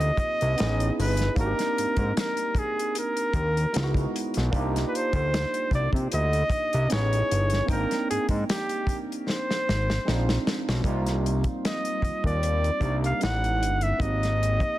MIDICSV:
0, 0, Header, 1, 5, 480
1, 0, Start_track
1, 0, Key_signature, -3, "minor"
1, 0, Tempo, 789474
1, 831, Time_signature, 4, 2, 24, 8
1, 8989, End_track
2, 0, Start_track
2, 0, Title_t, "Flugelhorn"
2, 0, Program_c, 0, 56
2, 0, Note_on_c, 0, 75, 117
2, 577, Note_off_c, 0, 75, 0
2, 611, Note_on_c, 0, 71, 90
2, 825, Note_off_c, 0, 71, 0
2, 856, Note_on_c, 0, 70, 104
2, 1299, Note_off_c, 0, 70, 0
2, 1332, Note_on_c, 0, 70, 92
2, 1571, Note_on_c, 0, 68, 86
2, 1580, Note_off_c, 0, 70, 0
2, 1801, Note_off_c, 0, 68, 0
2, 1815, Note_on_c, 0, 70, 89
2, 2498, Note_off_c, 0, 70, 0
2, 2966, Note_on_c, 0, 71, 79
2, 3017, Note_on_c, 0, 72, 118
2, 3026, Note_off_c, 0, 71, 0
2, 3484, Note_off_c, 0, 72, 0
2, 3493, Note_on_c, 0, 74, 94
2, 3591, Note_off_c, 0, 74, 0
2, 3735, Note_on_c, 0, 75, 116
2, 4178, Note_off_c, 0, 75, 0
2, 4211, Note_on_c, 0, 73, 109
2, 4657, Note_off_c, 0, 73, 0
2, 4691, Note_on_c, 0, 70, 96
2, 4905, Note_off_c, 0, 70, 0
2, 4928, Note_on_c, 0, 68, 91
2, 5025, Note_off_c, 0, 68, 0
2, 5169, Note_on_c, 0, 67, 92
2, 5459, Note_off_c, 0, 67, 0
2, 5647, Note_on_c, 0, 72, 93
2, 6335, Note_off_c, 0, 72, 0
2, 7091, Note_on_c, 0, 75, 81
2, 7425, Note_off_c, 0, 75, 0
2, 7455, Note_on_c, 0, 74, 99
2, 7903, Note_off_c, 0, 74, 0
2, 7935, Note_on_c, 0, 77, 90
2, 8031, Note_off_c, 0, 77, 0
2, 8044, Note_on_c, 0, 78, 106
2, 8407, Note_on_c, 0, 76, 92
2, 8416, Note_off_c, 0, 78, 0
2, 8520, Note_on_c, 0, 75, 104
2, 8529, Note_off_c, 0, 76, 0
2, 8989, Note_off_c, 0, 75, 0
2, 8989, End_track
3, 0, Start_track
3, 0, Title_t, "Tine electric piano"
3, 0, Program_c, 1, 4
3, 0, Control_c, 1, 64, 127
3, 0, Note_on_c, 1, 58, 93
3, 0, Note_on_c, 1, 60, 80
3, 0, Note_on_c, 1, 63, 78
3, 0, Note_on_c, 1, 65, 83
3, 0, Note_on_c, 1, 67, 97
3, 341, Note_on_c, 1, 59, 73
3, 350, Note_on_c, 1, 61, 64
3, 353, Note_off_c, 1, 63, 0
3, 353, Note_on_c, 1, 63, 68
3, 359, Control_c, 1, 64, 0
3, 361, Note_off_c, 1, 65, 0
3, 361, Note_on_c, 1, 64, 67
3, 364, Note_off_c, 1, 58, 0
3, 364, Note_off_c, 1, 67, 0
3, 365, Note_off_c, 1, 60, 0
3, 368, Note_on_c, 1, 68, 79
3, 481, Control_c, 1, 64, 127
3, 757, Note_off_c, 1, 59, 0
3, 761, Note_off_c, 1, 61, 0
3, 763, Note_off_c, 1, 63, 0
3, 766, Note_off_c, 1, 64, 0
3, 770, Note_off_c, 1, 68, 0
3, 823, Note_on_c, 1, 58, 76
3, 829, Note_on_c, 1, 60, 67
3, 835, Note_on_c, 1, 62, 73
3, 840, Control_c, 1, 64, 0
3, 841, Note_on_c, 1, 63, 69
3, 848, Note_on_c, 1, 66, 66
3, 882, Note_off_c, 1, 66, 0
3, 887, Note_on_c, 1, 67, 85
3, 958, Control_c, 1, 64, 127
3, 1643, Note_off_c, 1, 58, 0
3, 1647, Note_off_c, 1, 60, 0
3, 1650, Note_off_c, 1, 62, 0
3, 1652, Note_off_c, 1, 63, 0
3, 1675, Note_off_c, 1, 67, 0
3, 2266, Note_on_c, 1, 56, 73
3, 2272, Note_on_c, 1, 59, 65
3, 2278, Control_c, 1, 64, 0
3, 2278, Note_on_c, 1, 63, 65
3, 2285, Note_on_c, 1, 64, 67
3, 2292, Note_on_c, 1, 65, 62
3, 2324, Note_off_c, 1, 65, 0
3, 2330, Note_on_c, 1, 66, 82
3, 2377, Control_c, 1, 64, 127
3, 2679, Note_off_c, 1, 56, 0
3, 2682, Note_off_c, 1, 59, 0
3, 2685, Note_off_c, 1, 63, 0
3, 2688, Note_off_c, 1, 64, 0
3, 2711, Note_off_c, 1, 66, 0
3, 2741, Note_on_c, 1, 58, 85
3, 2748, Note_on_c, 1, 62, 86
3, 2755, Note_on_c, 1, 63, 81
3, 2759, Control_c, 1, 64, 0
3, 2761, Note_on_c, 1, 65, 78
3, 2765, Note_on_c, 1, 67, 94
3, 2864, Control_c, 1, 64, 127
3, 3562, Note_off_c, 1, 58, 0
3, 3566, Note_off_c, 1, 62, 0
3, 3569, Note_off_c, 1, 63, 0
3, 3572, Note_off_c, 1, 65, 0
3, 3575, Note_off_c, 1, 67, 0
3, 4184, Note_on_c, 1, 59, 70
3, 4190, Note_on_c, 1, 61, 66
3, 4195, Note_on_c, 1, 63, 62
3, 4199, Control_c, 1, 64, 0
3, 4202, Note_on_c, 1, 64, 62
3, 4206, Note_on_c, 1, 68, 79
3, 4297, Control_c, 1, 64, 127
3, 4598, Note_off_c, 1, 59, 0
3, 4601, Note_off_c, 1, 61, 0
3, 4603, Note_off_c, 1, 63, 0
3, 4607, Note_off_c, 1, 64, 0
3, 4609, Note_off_c, 1, 68, 0
3, 4657, Note_on_c, 1, 58, 78
3, 4662, Note_on_c, 1, 60, 68
3, 4669, Note_on_c, 1, 62, 68
3, 4676, Note_on_c, 1, 63, 65
3, 4680, Control_c, 1, 64, 0
3, 4682, Note_on_c, 1, 79, 79
3, 4787, Control_c, 1, 64, 127
3, 5480, Note_off_c, 1, 58, 0
3, 5483, Note_off_c, 1, 60, 0
3, 5486, Note_off_c, 1, 62, 0
3, 5490, Note_off_c, 1, 63, 0
3, 5493, Note_off_c, 1, 79, 0
3, 6109, Note_on_c, 1, 56, 66
3, 6114, Note_on_c, 1, 60, 65
3, 6118, Control_c, 1, 64, 0
3, 6120, Note_on_c, 1, 62, 63
3, 6124, Note_on_c, 1, 63, 67
3, 6135, Note_on_c, 1, 65, 82
3, 6210, Control_c, 1, 64, 127
3, 6521, Note_off_c, 1, 56, 0
3, 6523, Note_off_c, 1, 60, 0
3, 6526, Note_off_c, 1, 62, 0
3, 6528, Note_off_c, 1, 63, 0
3, 6533, Note_off_c, 1, 65, 0
3, 6584, Note_on_c, 1, 55, 75
3, 6587, Note_on_c, 1, 58, 72
3, 6596, Note_on_c, 1, 60, 70
3, 6599, Control_c, 1, 64, 0
3, 6602, Note_on_c, 1, 63, 72
3, 6610, Note_on_c, 1, 65, 82
3, 6712, Control_c, 1, 64, 127
3, 7404, Note_off_c, 1, 55, 0
3, 7405, Note_off_c, 1, 58, 0
3, 7410, Note_off_c, 1, 60, 0
3, 7413, Note_off_c, 1, 63, 0
3, 7417, Note_off_c, 1, 65, 0
3, 7780, Note_on_c, 1, 55, 64
3, 7785, Note_on_c, 1, 58, 61
3, 7791, Note_on_c, 1, 62, 59
3, 7799, Note_on_c, 1, 63, 57
3, 7803, Note_on_c, 1, 67, 71
3, 7991, Note_off_c, 1, 55, 0
3, 7993, Note_off_c, 1, 58, 0
3, 7996, Note_off_c, 1, 62, 0
3, 8000, Note_off_c, 1, 63, 0
3, 8002, Note_off_c, 1, 67, 0
3, 8015, Note_on_c, 1, 56, 59
3, 8020, Note_on_c, 1, 59, 52
3, 8028, Note_on_c, 1, 61, 52
3, 8034, Note_on_c, 1, 63, 56
3, 8039, Control_c, 1, 64, 0
3, 8042, Note_on_c, 1, 64, 66
3, 8154, Control_c, 1, 64, 127
3, 8433, Note_off_c, 1, 56, 0
3, 8436, Note_off_c, 1, 59, 0
3, 8440, Note_off_c, 1, 61, 0
3, 8443, Note_off_c, 1, 63, 0
3, 8447, Note_off_c, 1, 64, 0
3, 8501, Note_on_c, 1, 58, 70
3, 8507, Note_on_c, 1, 60, 64
3, 8519, Control_c, 1, 64, 0
3, 8520, Note_on_c, 1, 63, 61
3, 8526, Note_on_c, 1, 67, 72
3, 8632, Control_c, 1, 64, 127
3, 8989, Note_off_c, 1, 58, 0
3, 8989, Note_off_c, 1, 60, 0
3, 8989, Note_off_c, 1, 63, 0
3, 8989, Note_off_c, 1, 67, 0
3, 8989, End_track
4, 0, Start_track
4, 0, Title_t, "Analog synth bass"
4, 0, Program_c, 2, 38
4, 0, Note_on_c, 2, 38, 94
4, 71, Note_off_c, 2, 38, 0
4, 255, Note_on_c, 2, 36, 85
4, 338, Note_off_c, 2, 36, 0
4, 368, Note_on_c, 2, 33, 98
4, 553, Note_off_c, 2, 33, 0
4, 604, Note_on_c, 2, 31, 98
4, 790, Note_off_c, 2, 31, 0
4, 837, Note_on_c, 2, 32, 106
4, 937, Note_off_c, 2, 32, 0
4, 1086, Note_on_c, 2, 44, 47
4, 1134, Note_off_c, 2, 44, 0
4, 1205, Note_on_c, 2, 44, 100
4, 1292, Note_off_c, 2, 44, 0
4, 2037, Note_on_c, 2, 39, 96
4, 2226, Note_off_c, 2, 39, 0
4, 2287, Note_on_c, 2, 37, 104
4, 2472, Note_off_c, 2, 37, 0
4, 2657, Note_on_c, 2, 35, 88
4, 2739, Note_off_c, 2, 35, 0
4, 2761, Note_on_c, 2, 36, 101
4, 2949, Note_off_c, 2, 36, 0
4, 3128, Note_on_c, 2, 38, 90
4, 3316, Note_off_c, 2, 38, 0
4, 3480, Note_on_c, 2, 36, 94
4, 3579, Note_off_c, 2, 36, 0
4, 3612, Note_on_c, 2, 48, 86
4, 3696, Note_off_c, 2, 48, 0
4, 3727, Note_on_c, 2, 38, 101
4, 3912, Note_off_c, 2, 38, 0
4, 4099, Note_on_c, 2, 36, 94
4, 4180, Note_off_c, 2, 36, 0
4, 4210, Note_on_c, 2, 33, 93
4, 4394, Note_off_c, 2, 33, 0
4, 4450, Note_on_c, 2, 31, 86
4, 4634, Note_off_c, 2, 31, 0
4, 4681, Note_on_c, 2, 32, 117
4, 4779, Note_off_c, 2, 32, 0
4, 4932, Note_on_c, 2, 44, 49
4, 4978, Note_off_c, 2, 44, 0
4, 5048, Note_on_c, 2, 44, 106
4, 5134, Note_off_c, 2, 44, 0
4, 5892, Note_on_c, 2, 32, 100
4, 6075, Note_off_c, 2, 32, 0
4, 6132, Note_on_c, 2, 34, 101
4, 6315, Note_off_c, 2, 34, 0
4, 6497, Note_on_c, 2, 35, 94
4, 6579, Note_off_c, 2, 35, 0
4, 6598, Note_on_c, 2, 36, 100
4, 6978, Note_off_c, 2, 36, 0
4, 7319, Note_on_c, 2, 39, 47
4, 7368, Note_off_c, 2, 39, 0
4, 7449, Note_on_c, 2, 39, 85
4, 7726, Note_off_c, 2, 39, 0
4, 7794, Note_on_c, 2, 36, 96
4, 7984, Note_off_c, 2, 36, 0
4, 8047, Note_on_c, 2, 33, 96
4, 8287, Note_on_c, 2, 31, 87
4, 8297, Note_off_c, 2, 33, 0
4, 8472, Note_off_c, 2, 31, 0
4, 8518, Note_on_c, 2, 32, 106
4, 8898, Note_off_c, 2, 32, 0
4, 8989, End_track
5, 0, Start_track
5, 0, Title_t, "Drums"
5, 3, Note_on_c, 9, 42, 44
5, 64, Note_off_c, 9, 42, 0
5, 106, Note_on_c, 9, 36, 87
5, 110, Note_on_c, 9, 42, 65
5, 167, Note_off_c, 9, 36, 0
5, 170, Note_off_c, 9, 42, 0
5, 249, Note_on_c, 9, 42, 47
5, 310, Note_off_c, 9, 42, 0
5, 351, Note_on_c, 9, 42, 69
5, 367, Note_on_c, 9, 38, 107
5, 412, Note_off_c, 9, 42, 0
5, 427, Note_off_c, 9, 38, 0
5, 488, Note_on_c, 9, 42, 51
5, 548, Note_off_c, 9, 42, 0
5, 605, Note_on_c, 9, 46, 60
5, 666, Note_off_c, 9, 46, 0
5, 712, Note_on_c, 9, 42, 52
5, 734, Note_on_c, 9, 38, 37
5, 773, Note_off_c, 9, 42, 0
5, 794, Note_off_c, 9, 38, 0
5, 829, Note_on_c, 9, 36, 117
5, 835, Note_on_c, 9, 42, 74
5, 890, Note_off_c, 9, 36, 0
5, 896, Note_off_c, 9, 42, 0
5, 966, Note_on_c, 9, 42, 57
5, 971, Note_on_c, 9, 38, 37
5, 1027, Note_off_c, 9, 42, 0
5, 1032, Note_off_c, 9, 38, 0
5, 1084, Note_on_c, 9, 42, 61
5, 1145, Note_off_c, 9, 42, 0
5, 1195, Note_on_c, 9, 42, 50
5, 1197, Note_on_c, 9, 36, 82
5, 1256, Note_off_c, 9, 42, 0
5, 1258, Note_off_c, 9, 36, 0
5, 1320, Note_on_c, 9, 42, 85
5, 1322, Note_on_c, 9, 38, 107
5, 1380, Note_off_c, 9, 42, 0
5, 1383, Note_off_c, 9, 38, 0
5, 1441, Note_on_c, 9, 42, 53
5, 1502, Note_off_c, 9, 42, 0
5, 1548, Note_on_c, 9, 36, 72
5, 1555, Note_on_c, 9, 42, 63
5, 1609, Note_off_c, 9, 36, 0
5, 1616, Note_off_c, 9, 42, 0
5, 1699, Note_on_c, 9, 42, 44
5, 1760, Note_off_c, 9, 42, 0
5, 1795, Note_on_c, 9, 42, 86
5, 1856, Note_off_c, 9, 42, 0
5, 1925, Note_on_c, 9, 42, 44
5, 1986, Note_off_c, 9, 42, 0
5, 2028, Note_on_c, 9, 36, 89
5, 2030, Note_on_c, 9, 42, 60
5, 2089, Note_off_c, 9, 36, 0
5, 2091, Note_off_c, 9, 42, 0
5, 2172, Note_on_c, 9, 42, 48
5, 2232, Note_off_c, 9, 42, 0
5, 2274, Note_on_c, 9, 42, 72
5, 2289, Note_on_c, 9, 38, 110
5, 2335, Note_off_c, 9, 42, 0
5, 2350, Note_off_c, 9, 38, 0
5, 2398, Note_on_c, 9, 36, 91
5, 2412, Note_on_c, 9, 42, 48
5, 2459, Note_off_c, 9, 36, 0
5, 2473, Note_off_c, 9, 42, 0
5, 2528, Note_on_c, 9, 42, 79
5, 2589, Note_off_c, 9, 42, 0
5, 2639, Note_on_c, 9, 42, 50
5, 2661, Note_on_c, 9, 38, 36
5, 2700, Note_off_c, 9, 42, 0
5, 2722, Note_off_c, 9, 38, 0
5, 2753, Note_on_c, 9, 36, 114
5, 2760, Note_on_c, 9, 42, 77
5, 2814, Note_off_c, 9, 36, 0
5, 2821, Note_off_c, 9, 42, 0
5, 2894, Note_on_c, 9, 42, 54
5, 2899, Note_on_c, 9, 38, 36
5, 2955, Note_off_c, 9, 42, 0
5, 2960, Note_off_c, 9, 38, 0
5, 3010, Note_on_c, 9, 42, 56
5, 3071, Note_off_c, 9, 42, 0
5, 3120, Note_on_c, 9, 36, 86
5, 3120, Note_on_c, 9, 42, 51
5, 3181, Note_off_c, 9, 36, 0
5, 3181, Note_off_c, 9, 42, 0
5, 3246, Note_on_c, 9, 42, 83
5, 3248, Note_on_c, 9, 38, 108
5, 3307, Note_off_c, 9, 42, 0
5, 3309, Note_off_c, 9, 38, 0
5, 3368, Note_on_c, 9, 42, 53
5, 3429, Note_off_c, 9, 42, 0
5, 3472, Note_on_c, 9, 36, 81
5, 3483, Note_on_c, 9, 42, 60
5, 3533, Note_off_c, 9, 36, 0
5, 3544, Note_off_c, 9, 42, 0
5, 3603, Note_on_c, 9, 36, 95
5, 3625, Note_on_c, 9, 42, 44
5, 3664, Note_off_c, 9, 36, 0
5, 3686, Note_off_c, 9, 42, 0
5, 3718, Note_on_c, 9, 42, 81
5, 3779, Note_off_c, 9, 42, 0
5, 3850, Note_on_c, 9, 42, 43
5, 3911, Note_off_c, 9, 42, 0
5, 3949, Note_on_c, 9, 36, 84
5, 3954, Note_on_c, 9, 42, 66
5, 4010, Note_off_c, 9, 36, 0
5, 4015, Note_off_c, 9, 42, 0
5, 4092, Note_on_c, 9, 42, 51
5, 4152, Note_off_c, 9, 42, 0
5, 4194, Note_on_c, 9, 42, 72
5, 4210, Note_on_c, 9, 38, 105
5, 4255, Note_off_c, 9, 42, 0
5, 4270, Note_off_c, 9, 38, 0
5, 4333, Note_on_c, 9, 42, 50
5, 4394, Note_off_c, 9, 42, 0
5, 4447, Note_on_c, 9, 42, 86
5, 4508, Note_off_c, 9, 42, 0
5, 4559, Note_on_c, 9, 42, 48
5, 4580, Note_on_c, 9, 38, 33
5, 4619, Note_off_c, 9, 42, 0
5, 4641, Note_off_c, 9, 38, 0
5, 4672, Note_on_c, 9, 36, 115
5, 4678, Note_on_c, 9, 42, 76
5, 4733, Note_off_c, 9, 36, 0
5, 4739, Note_off_c, 9, 42, 0
5, 4809, Note_on_c, 9, 42, 51
5, 4815, Note_on_c, 9, 38, 36
5, 4870, Note_off_c, 9, 42, 0
5, 4875, Note_off_c, 9, 38, 0
5, 4929, Note_on_c, 9, 42, 60
5, 4990, Note_off_c, 9, 42, 0
5, 5038, Note_on_c, 9, 42, 53
5, 5039, Note_on_c, 9, 36, 81
5, 5099, Note_off_c, 9, 42, 0
5, 5100, Note_off_c, 9, 36, 0
5, 5165, Note_on_c, 9, 42, 88
5, 5167, Note_on_c, 9, 38, 110
5, 5226, Note_off_c, 9, 42, 0
5, 5228, Note_off_c, 9, 38, 0
5, 5286, Note_on_c, 9, 42, 48
5, 5346, Note_off_c, 9, 42, 0
5, 5392, Note_on_c, 9, 36, 77
5, 5402, Note_on_c, 9, 42, 62
5, 5452, Note_off_c, 9, 36, 0
5, 5463, Note_off_c, 9, 42, 0
5, 5546, Note_on_c, 9, 42, 42
5, 5607, Note_off_c, 9, 42, 0
5, 5650, Note_on_c, 9, 38, 58
5, 5711, Note_off_c, 9, 38, 0
5, 5779, Note_on_c, 9, 38, 51
5, 5840, Note_off_c, 9, 38, 0
5, 5892, Note_on_c, 9, 38, 74
5, 5953, Note_off_c, 9, 38, 0
5, 6018, Note_on_c, 9, 38, 68
5, 6079, Note_off_c, 9, 38, 0
5, 6129, Note_on_c, 9, 38, 91
5, 6190, Note_off_c, 9, 38, 0
5, 6256, Note_on_c, 9, 38, 82
5, 6317, Note_off_c, 9, 38, 0
5, 6367, Note_on_c, 9, 38, 105
5, 6428, Note_off_c, 9, 38, 0
5, 6498, Note_on_c, 9, 38, 91
5, 6558, Note_off_c, 9, 38, 0
5, 6591, Note_on_c, 9, 36, 97
5, 6596, Note_on_c, 9, 42, 68
5, 6652, Note_off_c, 9, 36, 0
5, 6657, Note_off_c, 9, 42, 0
5, 6728, Note_on_c, 9, 42, 47
5, 6733, Note_on_c, 9, 38, 28
5, 6788, Note_off_c, 9, 42, 0
5, 6794, Note_off_c, 9, 38, 0
5, 6847, Note_on_c, 9, 42, 49
5, 6908, Note_off_c, 9, 42, 0
5, 6956, Note_on_c, 9, 42, 45
5, 6958, Note_on_c, 9, 36, 75
5, 7016, Note_off_c, 9, 42, 0
5, 7018, Note_off_c, 9, 36, 0
5, 7082, Note_on_c, 9, 42, 73
5, 7085, Note_on_c, 9, 38, 98
5, 7143, Note_off_c, 9, 42, 0
5, 7145, Note_off_c, 9, 38, 0
5, 7204, Note_on_c, 9, 42, 43
5, 7265, Note_off_c, 9, 42, 0
5, 7310, Note_on_c, 9, 36, 66
5, 7322, Note_on_c, 9, 42, 52
5, 7371, Note_off_c, 9, 36, 0
5, 7383, Note_off_c, 9, 42, 0
5, 7441, Note_on_c, 9, 36, 79
5, 7461, Note_on_c, 9, 42, 39
5, 7502, Note_off_c, 9, 36, 0
5, 7522, Note_off_c, 9, 42, 0
5, 7557, Note_on_c, 9, 42, 71
5, 7618, Note_off_c, 9, 42, 0
5, 7687, Note_on_c, 9, 42, 37
5, 7747, Note_off_c, 9, 42, 0
5, 7787, Note_on_c, 9, 36, 75
5, 7792, Note_on_c, 9, 42, 57
5, 7848, Note_off_c, 9, 36, 0
5, 7853, Note_off_c, 9, 42, 0
5, 7929, Note_on_c, 9, 42, 44
5, 7989, Note_off_c, 9, 42, 0
5, 8031, Note_on_c, 9, 42, 59
5, 8047, Note_on_c, 9, 38, 96
5, 8092, Note_off_c, 9, 42, 0
5, 8107, Note_off_c, 9, 38, 0
5, 8171, Note_on_c, 9, 42, 44
5, 8232, Note_off_c, 9, 42, 0
5, 8285, Note_on_c, 9, 42, 71
5, 8346, Note_off_c, 9, 42, 0
5, 8397, Note_on_c, 9, 42, 42
5, 8458, Note_off_c, 9, 42, 0
5, 8511, Note_on_c, 9, 36, 111
5, 8520, Note_on_c, 9, 42, 69
5, 8572, Note_off_c, 9, 36, 0
5, 8581, Note_off_c, 9, 42, 0
5, 8652, Note_on_c, 9, 42, 49
5, 8657, Note_on_c, 9, 38, 31
5, 8713, Note_off_c, 9, 42, 0
5, 8718, Note_off_c, 9, 38, 0
5, 8772, Note_on_c, 9, 42, 54
5, 8833, Note_off_c, 9, 42, 0
5, 8878, Note_on_c, 9, 36, 80
5, 8882, Note_on_c, 9, 42, 46
5, 8939, Note_off_c, 9, 36, 0
5, 8942, Note_off_c, 9, 42, 0
5, 8989, End_track
0, 0, End_of_file